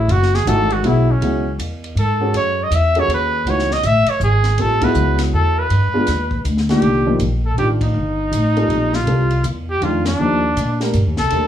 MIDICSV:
0, 0, Header, 1, 6, 480
1, 0, Start_track
1, 0, Tempo, 373832
1, 122, Time_signature, 3, 2, 24, 8
1, 14731, End_track
2, 0, Start_track
2, 0, Title_t, "Trumpet"
2, 0, Program_c, 0, 56
2, 0, Note_on_c, 0, 64, 82
2, 144, Note_on_c, 0, 66, 95
2, 163, Note_off_c, 0, 64, 0
2, 451, Note_on_c, 0, 68, 80
2, 470, Note_off_c, 0, 66, 0
2, 621, Note_on_c, 0, 69, 93
2, 640, Note_off_c, 0, 68, 0
2, 934, Note_on_c, 0, 66, 80
2, 953, Note_off_c, 0, 69, 0
2, 1115, Note_on_c, 0, 64, 78
2, 1134, Note_off_c, 0, 66, 0
2, 1428, Note_on_c, 0, 61, 67
2, 1447, Note_off_c, 0, 64, 0
2, 1984, Note_off_c, 0, 61, 0
2, 2555, Note_on_c, 0, 69, 80
2, 2985, Note_off_c, 0, 69, 0
2, 3037, Note_on_c, 0, 73, 88
2, 3382, Note_on_c, 0, 75, 79
2, 3402, Note_off_c, 0, 73, 0
2, 3525, Note_on_c, 0, 76, 89
2, 3544, Note_off_c, 0, 75, 0
2, 3843, Note_on_c, 0, 73, 95
2, 3862, Note_off_c, 0, 76, 0
2, 3989, Note_off_c, 0, 73, 0
2, 4035, Note_on_c, 0, 71, 94
2, 4493, Note_on_c, 0, 73, 88
2, 4512, Note_off_c, 0, 71, 0
2, 4789, Note_on_c, 0, 75, 90
2, 4808, Note_off_c, 0, 73, 0
2, 4953, Note_on_c, 0, 76, 100
2, 4972, Note_off_c, 0, 75, 0
2, 5257, Note_on_c, 0, 73, 88
2, 5276, Note_off_c, 0, 76, 0
2, 5415, Note_off_c, 0, 73, 0
2, 5438, Note_on_c, 0, 68, 89
2, 5919, Note_on_c, 0, 69, 90
2, 5938, Note_off_c, 0, 68, 0
2, 6215, Note_on_c, 0, 71, 84
2, 6235, Note_off_c, 0, 69, 0
2, 6679, Note_off_c, 0, 71, 0
2, 6864, Note_on_c, 0, 69, 85
2, 7175, Note_on_c, 0, 71, 83
2, 7194, Note_off_c, 0, 69, 0
2, 8294, Note_off_c, 0, 71, 0
2, 8605, Note_on_c, 0, 67, 82
2, 9205, Note_off_c, 0, 67, 0
2, 9572, Note_on_c, 0, 69, 70
2, 9722, Note_off_c, 0, 69, 0
2, 9740, Note_on_c, 0, 67, 72
2, 9872, Note_off_c, 0, 67, 0
2, 10061, Note_on_c, 0, 63, 77
2, 11491, Note_on_c, 0, 65, 88
2, 11510, Note_off_c, 0, 63, 0
2, 12134, Note_off_c, 0, 65, 0
2, 12449, Note_on_c, 0, 67, 85
2, 12632, Note_on_c, 0, 65, 79
2, 12651, Note_off_c, 0, 67, 0
2, 12921, Note_off_c, 0, 65, 0
2, 12927, Note_on_c, 0, 62, 86
2, 13924, Note_off_c, 0, 62, 0
2, 14369, Note_on_c, 0, 69, 86
2, 14731, Note_off_c, 0, 69, 0
2, 14731, End_track
3, 0, Start_track
3, 0, Title_t, "Upright piano"
3, 0, Program_c, 1, 0
3, 603, Note_on_c, 1, 52, 70
3, 603, Note_on_c, 1, 57, 64
3, 605, Note_on_c, 1, 63, 65
3, 605, Note_on_c, 1, 66, 83
3, 876, Note_off_c, 1, 52, 0
3, 876, Note_off_c, 1, 57, 0
3, 877, Note_off_c, 1, 63, 0
3, 877, Note_off_c, 1, 66, 0
3, 1078, Note_on_c, 1, 54, 66
3, 1082, Note_on_c, 1, 59, 59
3, 1082, Note_on_c, 1, 64, 60
3, 1093, Note_on_c, 1, 68, 70
3, 1353, Note_off_c, 1, 54, 0
3, 1355, Note_off_c, 1, 59, 0
3, 1355, Note_off_c, 1, 64, 0
3, 1360, Note_off_c, 1, 68, 0
3, 1563, Note_on_c, 1, 54, 54
3, 1569, Note_on_c, 1, 59, 51
3, 1569, Note_on_c, 1, 64, 51
3, 1573, Note_on_c, 1, 68, 57
3, 1835, Note_off_c, 1, 54, 0
3, 1838, Note_off_c, 1, 59, 0
3, 1838, Note_off_c, 1, 64, 0
3, 1840, Note_off_c, 1, 68, 0
3, 2829, Note_on_c, 1, 68, 60
3, 2833, Note_on_c, 1, 61, 56
3, 2837, Note_on_c, 1, 66, 57
3, 2840, Note_on_c, 1, 69, 60
3, 3447, Note_off_c, 1, 68, 0
3, 3449, Note_off_c, 1, 61, 0
3, 3451, Note_off_c, 1, 66, 0
3, 3452, Note_off_c, 1, 69, 0
3, 3800, Note_on_c, 1, 68, 59
3, 3801, Note_on_c, 1, 61, 55
3, 3801, Note_on_c, 1, 69, 66
3, 3804, Note_on_c, 1, 66, 55
3, 4412, Note_off_c, 1, 61, 0
3, 4412, Note_off_c, 1, 68, 0
3, 4412, Note_off_c, 1, 69, 0
3, 4414, Note_off_c, 1, 66, 0
3, 4449, Note_on_c, 1, 52, 51
3, 4452, Note_on_c, 1, 57, 51
3, 4458, Note_on_c, 1, 66, 63
3, 4459, Note_on_c, 1, 63, 53
3, 4718, Note_off_c, 1, 52, 0
3, 4719, Note_off_c, 1, 57, 0
3, 4722, Note_off_c, 1, 66, 0
3, 4723, Note_off_c, 1, 63, 0
3, 5888, Note_on_c, 1, 55, 55
3, 5895, Note_on_c, 1, 60, 54
3, 5896, Note_on_c, 1, 69, 61
3, 5897, Note_on_c, 1, 65, 53
3, 6157, Note_off_c, 1, 55, 0
3, 6161, Note_off_c, 1, 60, 0
3, 6161, Note_off_c, 1, 69, 0
3, 6162, Note_off_c, 1, 65, 0
3, 6181, Note_on_c, 1, 54, 68
3, 6187, Note_on_c, 1, 64, 59
3, 6189, Note_on_c, 1, 59, 57
3, 6189, Note_on_c, 1, 68, 71
3, 7212, Note_off_c, 1, 54, 0
3, 7215, Note_off_c, 1, 64, 0
3, 7216, Note_off_c, 1, 59, 0
3, 7216, Note_off_c, 1, 68, 0
3, 7622, Note_on_c, 1, 62, 56
3, 7625, Note_on_c, 1, 59, 61
3, 7626, Note_on_c, 1, 56, 64
3, 7627, Note_on_c, 1, 65, 81
3, 7781, Note_off_c, 1, 62, 0
3, 7782, Note_off_c, 1, 59, 0
3, 7783, Note_off_c, 1, 56, 0
3, 7783, Note_off_c, 1, 65, 0
3, 8594, Note_on_c, 1, 46, 64
3, 8597, Note_on_c, 1, 51, 61
3, 8597, Note_on_c, 1, 57, 63
3, 8598, Note_on_c, 1, 62, 64
3, 8598, Note_on_c, 1, 65, 67
3, 9071, Note_on_c, 1, 53, 69
3, 9071, Note_on_c, 1, 63, 60
3, 9073, Note_on_c, 1, 58, 69
3, 9078, Note_on_c, 1, 67, 70
3, 9209, Note_off_c, 1, 46, 0
3, 9211, Note_off_c, 1, 51, 0
3, 9211, Note_off_c, 1, 57, 0
3, 9212, Note_off_c, 1, 62, 0
3, 9212, Note_off_c, 1, 65, 0
3, 9226, Note_off_c, 1, 53, 0
3, 9226, Note_off_c, 1, 58, 0
3, 9226, Note_off_c, 1, 63, 0
3, 9229, Note_off_c, 1, 67, 0
3, 9732, Note_on_c, 1, 51, 60
3, 9733, Note_on_c, 1, 57, 48
3, 9735, Note_on_c, 1, 62, 52
3, 9737, Note_on_c, 1, 65, 62
3, 10000, Note_off_c, 1, 51, 0
3, 10001, Note_off_c, 1, 57, 0
3, 10001, Note_off_c, 1, 62, 0
3, 10002, Note_off_c, 1, 65, 0
3, 10998, Note_on_c, 1, 60, 55
3, 11000, Note_on_c, 1, 55, 58
3, 11002, Note_on_c, 1, 65, 58
3, 11002, Note_on_c, 1, 69, 68
3, 11613, Note_off_c, 1, 60, 0
3, 11614, Note_off_c, 1, 55, 0
3, 11614, Note_off_c, 1, 69, 0
3, 11615, Note_off_c, 1, 65, 0
3, 11651, Note_on_c, 1, 55, 61
3, 11652, Note_on_c, 1, 60, 53
3, 11652, Note_on_c, 1, 69, 67
3, 11654, Note_on_c, 1, 65, 54
3, 11920, Note_off_c, 1, 55, 0
3, 11921, Note_off_c, 1, 60, 0
3, 11921, Note_off_c, 1, 69, 0
3, 11922, Note_off_c, 1, 65, 0
3, 12609, Note_on_c, 1, 51, 59
3, 12614, Note_on_c, 1, 62, 56
3, 12617, Note_on_c, 1, 57, 58
3, 12618, Note_on_c, 1, 65, 73
3, 12879, Note_off_c, 1, 51, 0
3, 12882, Note_off_c, 1, 62, 0
3, 12884, Note_off_c, 1, 57, 0
3, 12884, Note_off_c, 1, 65, 0
3, 13099, Note_on_c, 1, 53, 59
3, 13100, Note_on_c, 1, 58, 50
3, 13105, Note_on_c, 1, 63, 48
3, 13106, Note_on_c, 1, 67, 61
3, 13365, Note_off_c, 1, 53, 0
3, 13365, Note_off_c, 1, 58, 0
3, 13368, Note_off_c, 1, 63, 0
3, 13368, Note_off_c, 1, 67, 0
3, 13872, Note_on_c, 1, 57, 56
3, 13875, Note_on_c, 1, 62, 59
3, 13882, Note_on_c, 1, 67, 57
3, 13882, Note_on_c, 1, 70, 63
3, 14027, Note_off_c, 1, 57, 0
3, 14029, Note_off_c, 1, 62, 0
3, 14032, Note_off_c, 1, 67, 0
3, 14032, Note_off_c, 1, 70, 0
3, 14533, Note_on_c, 1, 57, 54
3, 14533, Note_on_c, 1, 62, 47
3, 14536, Note_on_c, 1, 67, 45
3, 14538, Note_on_c, 1, 70, 58
3, 14731, Note_off_c, 1, 57, 0
3, 14731, Note_off_c, 1, 62, 0
3, 14731, Note_off_c, 1, 67, 0
3, 14731, Note_off_c, 1, 70, 0
3, 14731, End_track
4, 0, Start_track
4, 0, Title_t, "Upright bass"
4, 0, Program_c, 2, 32
4, 105, Note_on_c, 2, 30, 91
4, 573, Note_off_c, 2, 30, 0
4, 581, Note_on_c, 2, 32, 88
4, 1056, Note_off_c, 2, 32, 0
4, 1070, Note_on_c, 2, 35, 82
4, 1541, Note_off_c, 2, 35, 0
4, 1548, Note_on_c, 2, 37, 79
4, 2019, Note_off_c, 2, 37, 0
4, 2036, Note_on_c, 2, 40, 80
4, 2500, Note_off_c, 2, 40, 0
4, 2508, Note_on_c, 2, 44, 77
4, 2979, Note_off_c, 2, 44, 0
4, 2995, Note_on_c, 2, 42, 76
4, 3463, Note_off_c, 2, 42, 0
4, 3472, Note_on_c, 2, 40, 82
4, 3941, Note_off_c, 2, 40, 0
4, 3947, Note_on_c, 2, 39, 82
4, 4418, Note_off_c, 2, 39, 0
4, 4431, Note_on_c, 2, 37, 79
4, 4900, Note_off_c, 2, 37, 0
4, 4921, Note_on_c, 2, 33, 87
4, 5203, Note_off_c, 2, 33, 0
4, 5391, Note_on_c, 2, 32, 92
4, 5860, Note_off_c, 2, 32, 0
4, 5876, Note_on_c, 2, 33, 77
4, 6343, Note_off_c, 2, 33, 0
4, 6359, Note_on_c, 2, 37, 92
4, 6824, Note_off_c, 2, 37, 0
4, 6841, Note_on_c, 2, 40, 83
4, 7305, Note_off_c, 2, 40, 0
4, 7318, Note_on_c, 2, 43, 85
4, 7601, Note_off_c, 2, 43, 0
4, 7800, Note_on_c, 2, 39, 89
4, 8265, Note_off_c, 2, 39, 0
4, 8276, Note_on_c, 2, 38, 87
4, 8743, Note_off_c, 2, 38, 0
4, 8759, Note_on_c, 2, 36, 73
4, 9225, Note_off_c, 2, 36, 0
4, 9235, Note_on_c, 2, 34, 86
4, 9703, Note_off_c, 2, 34, 0
4, 9719, Note_on_c, 2, 33, 79
4, 10185, Note_off_c, 2, 33, 0
4, 10195, Note_on_c, 2, 31, 82
4, 10663, Note_off_c, 2, 31, 0
4, 10677, Note_on_c, 2, 33, 82
4, 11141, Note_off_c, 2, 33, 0
4, 11148, Note_on_c, 2, 34, 87
4, 11621, Note_off_c, 2, 34, 0
4, 11630, Note_on_c, 2, 36, 81
4, 12102, Note_off_c, 2, 36, 0
4, 12114, Note_on_c, 2, 40, 92
4, 12583, Note_off_c, 2, 40, 0
4, 12600, Note_on_c, 2, 41, 89
4, 13066, Note_off_c, 2, 41, 0
4, 13085, Note_on_c, 2, 39, 81
4, 13549, Note_off_c, 2, 39, 0
4, 13564, Note_on_c, 2, 46, 91
4, 14029, Note_off_c, 2, 46, 0
4, 14043, Note_on_c, 2, 43, 85
4, 14204, Note_off_c, 2, 43, 0
4, 14204, Note_on_c, 2, 39, 55
4, 14358, Note_off_c, 2, 39, 0
4, 14365, Note_on_c, 2, 36, 62
4, 14512, Note_off_c, 2, 36, 0
4, 14519, Note_on_c, 2, 39, 82
4, 14731, Note_off_c, 2, 39, 0
4, 14731, End_track
5, 0, Start_track
5, 0, Title_t, "Muted upright bass strokes"
5, 5228, Note_on_c, 9, 29, 31
5, 5356, Note_off_c, 9, 29, 0
5, 7620, Note_on_c, 9, 29, 34
5, 7748, Note_off_c, 9, 29, 0
5, 14731, End_track
6, 0, Start_track
6, 0, Title_t, "Drums"
6, 117, Note_on_c, 9, 51, 64
6, 245, Note_off_c, 9, 51, 0
6, 291, Note_on_c, 9, 38, 28
6, 419, Note_off_c, 9, 38, 0
6, 440, Note_on_c, 9, 38, 41
6, 568, Note_off_c, 9, 38, 0
6, 606, Note_on_c, 9, 44, 58
6, 606, Note_on_c, 9, 51, 66
6, 734, Note_off_c, 9, 44, 0
6, 734, Note_off_c, 9, 51, 0
6, 904, Note_on_c, 9, 51, 45
6, 1033, Note_off_c, 9, 51, 0
6, 1077, Note_on_c, 9, 51, 59
6, 1205, Note_off_c, 9, 51, 0
6, 1566, Note_on_c, 9, 51, 59
6, 1694, Note_off_c, 9, 51, 0
6, 2048, Note_on_c, 9, 44, 53
6, 2048, Note_on_c, 9, 51, 70
6, 2176, Note_off_c, 9, 44, 0
6, 2176, Note_off_c, 9, 51, 0
6, 2362, Note_on_c, 9, 51, 50
6, 2490, Note_off_c, 9, 51, 0
6, 2530, Note_on_c, 9, 51, 58
6, 2659, Note_off_c, 9, 51, 0
6, 3005, Note_on_c, 9, 51, 66
6, 3134, Note_off_c, 9, 51, 0
6, 3486, Note_on_c, 9, 44, 60
6, 3486, Note_on_c, 9, 51, 72
6, 3615, Note_off_c, 9, 44, 0
6, 3615, Note_off_c, 9, 51, 0
6, 3787, Note_on_c, 9, 51, 48
6, 3916, Note_off_c, 9, 51, 0
6, 3976, Note_on_c, 9, 51, 56
6, 4104, Note_off_c, 9, 51, 0
6, 4451, Note_on_c, 9, 51, 60
6, 4580, Note_off_c, 9, 51, 0
6, 4611, Note_on_c, 9, 38, 28
6, 4739, Note_off_c, 9, 38, 0
6, 4765, Note_on_c, 9, 38, 43
6, 4893, Note_off_c, 9, 38, 0
6, 4922, Note_on_c, 9, 44, 52
6, 4922, Note_on_c, 9, 51, 59
6, 5050, Note_off_c, 9, 44, 0
6, 5050, Note_off_c, 9, 51, 0
6, 5218, Note_on_c, 9, 51, 66
6, 5347, Note_off_c, 9, 51, 0
6, 5401, Note_on_c, 9, 44, 51
6, 5529, Note_off_c, 9, 44, 0
6, 5698, Note_on_c, 9, 38, 31
6, 5699, Note_on_c, 9, 51, 43
6, 5826, Note_off_c, 9, 38, 0
6, 5827, Note_off_c, 9, 51, 0
6, 5878, Note_on_c, 9, 51, 60
6, 6006, Note_off_c, 9, 51, 0
6, 6181, Note_on_c, 9, 36, 77
6, 6182, Note_on_c, 9, 51, 76
6, 6310, Note_off_c, 9, 36, 0
6, 6311, Note_off_c, 9, 51, 0
6, 6351, Note_on_c, 9, 44, 60
6, 6479, Note_off_c, 9, 44, 0
6, 6657, Note_on_c, 9, 38, 43
6, 6658, Note_on_c, 9, 51, 73
6, 6785, Note_off_c, 9, 38, 0
6, 6786, Note_off_c, 9, 51, 0
6, 7321, Note_on_c, 9, 51, 61
6, 7450, Note_off_c, 9, 51, 0
6, 7789, Note_on_c, 9, 38, 36
6, 7790, Note_on_c, 9, 44, 48
6, 7790, Note_on_c, 9, 51, 62
6, 7917, Note_off_c, 9, 38, 0
6, 7918, Note_off_c, 9, 44, 0
6, 7918, Note_off_c, 9, 51, 0
6, 8101, Note_on_c, 9, 36, 59
6, 8229, Note_off_c, 9, 36, 0
6, 8281, Note_on_c, 9, 44, 55
6, 8281, Note_on_c, 9, 51, 60
6, 8410, Note_off_c, 9, 44, 0
6, 8410, Note_off_c, 9, 51, 0
6, 8441, Note_on_c, 9, 38, 29
6, 8569, Note_off_c, 9, 38, 0
6, 8590, Note_on_c, 9, 51, 43
6, 8595, Note_on_c, 9, 38, 40
6, 8718, Note_off_c, 9, 51, 0
6, 8724, Note_off_c, 9, 38, 0
6, 8755, Note_on_c, 9, 51, 56
6, 8883, Note_off_c, 9, 51, 0
6, 9239, Note_on_c, 9, 44, 47
6, 9239, Note_on_c, 9, 51, 61
6, 9368, Note_off_c, 9, 44, 0
6, 9368, Note_off_c, 9, 51, 0
6, 9731, Note_on_c, 9, 51, 45
6, 9859, Note_off_c, 9, 51, 0
6, 10027, Note_on_c, 9, 36, 71
6, 10030, Note_on_c, 9, 51, 65
6, 10156, Note_off_c, 9, 36, 0
6, 10159, Note_off_c, 9, 51, 0
6, 10690, Note_on_c, 9, 44, 57
6, 10690, Note_on_c, 9, 51, 66
6, 10819, Note_off_c, 9, 44, 0
6, 10819, Note_off_c, 9, 51, 0
6, 10999, Note_on_c, 9, 51, 40
6, 11128, Note_off_c, 9, 51, 0
6, 11170, Note_on_c, 9, 51, 47
6, 11299, Note_off_c, 9, 51, 0
6, 11471, Note_on_c, 9, 38, 51
6, 11599, Note_off_c, 9, 38, 0
6, 11647, Note_on_c, 9, 51, 54
6, 11775, Note_off_c, 9, 51, 0
6, 11948, Note_on_c, 9, 51, 45
6, 12076, Note_off_c, 9, 51, 0
6, 12121, Note_on_c, 9, 44, 50
6, 12121, Note_on_c, 9, 51, 63
6, 12249, Note_off_c, 9, 44, 0
6, 12249, Note_off_c, 9, 51, 0
6, 12605, Note_on_c, 9, 51, 52
6, 12733, Note_off_c, 9, 51, 0
6, 12910, Note_on_c, 9, 38, 71
6, 12911, Note_on_c, 9, 51, 63
6, 13038, Note_off_c, 9, 38, 0
6, 13040, Note_off_c, 9, 51, 0
6, 13569, Note_on_c, 9, 44, 57
6, 13569, Note_on_c, 9, 51, 62
6, 13698, Note_off_c, 9, 44, 0
6, 13698, Note_off_c, 9, 51, 0
6, 13876, Note_on_c, 9, 38, 42
6, 13877, Note_on_c, 9, 51, 46
6, 14005, Note_off_c, 9, 38, 0
6, 14006, Note_off_c, 9, 51, 0
6, 14040, Note_on_c, 9, 44, 47
6, 14040, Note_on_c, 9, 51, 55
6, 14169, Note_off_c, 9, 44, 0
6, 14169, Note_off_c, 9, 51, 0
6, 14344, Note_on_c, 9, 38, 47
6, 14345, Note_on_c, 9, 51, 37
6, 14472, Note_off_c, 9, 38, 0
6, 14474, Note_off_c, 9, 51, 0
6, 14514, Note_on_c, 9, 51, 60
6, 14643, Note_off_c, 9, 51, 0
6, 14731, End_track
0, 0, End_of_file